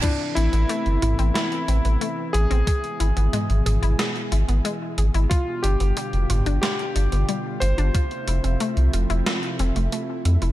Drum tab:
CC |x---------------|----------------|----------------|----------------|
HH |x-xxxxxxxxxxx-xx|xxxxxxxxxxxxx-xx|x-xxxxxxxxxxx-xx|xxxxxxxxxxxxx-xx|
SD |--------o-------|--------o-------|--------o-------|--------o-------|
T2 |------o---------|----o-o---------|------o---------|----------------|
BD |o---------------|o---------------|o---------------|o---------------|